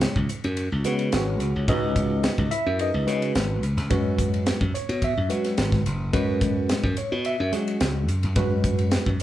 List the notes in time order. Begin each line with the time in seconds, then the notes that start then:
Already playing: G#3 C#5
0.01 snare, ride
0.16 C#2, kick
0.29 hi-hat pedal, ride
0.44 F#2, ride
0.57 ride
0.72 C#2
0.84 C#3 G#3 B3 C#4 F#4 G#4 B4, snare, hi-hat pedal, ride
0.99 ride
1.12 G#1 C#4 F#4 G#4 C#5, snare, ride
1.40 C#2, hi-hat pedal, ride
1.56 C#2
1.68 C#2 G#3 C#4 D#4 F#4 G#4 B4 D#5, kick, ride
1.96 kick, hi-hat pedal, ride
2.24 snare, ride
2.38 C#2, kick
2.51 E4 E5, hi-hat pedal, ride
2.66 F#2
2.79 D#4 G#4 B4 D#5, ride
2.94 C#2
3.07 C#3 G#3 C#4 F#4 B4, snare, hi-hat pedal, ride
3.22 ride
3.35 G#1, snare, ride
3.63 C#2, hi-hat pedal, ride
3.77 C#2, snare, ride
3.90 F#2 G#3 C#4 F#4 B4, kick, ride
4.18 kick, hi-hat pedal, ride
4.34 ride
4.46 snare, ride
4.61 F#2, kick
4.74 C#5, hi-hat pedal, ride
4.89 B2, ride
5.02 E5, kick, ride
5.17 F#2
5.29 F#3 G#3 C#4 F#4 B4, hi-hat pedal, ride
5.44 snare, ride
5.57 G#1, snare, ride
5.72 kick, snare
5.86 F#1, hi-hat pedal, ride
6.13 F#2 G#3 C#4 F#4 B4, kick, ride
6.41 kick, hi-hat pedal, ride
6.69 snare, ride
6.83 F#2, kick
6.97 C#5, hi-hat pedal, ride
7.12 B2
7.25 E5, ride
7.40 F#2
7.52 F#3 G#3 C#4 F#4 G#4, snare, hi-hat pedal, ride
7.68 ride
7.80 C#2, snare, ride
8.08 F#2, hi-hat pedal, ride
8.23 F#2, ride
8.36 F#2 G#3 C#4 F#4 B4, kick, ride
8.64 kick, hi-hat pedal, ride
8.79 ride
8.91 snare, ride
9.06 F#2, kick
9.20 hi-hat pedal, ride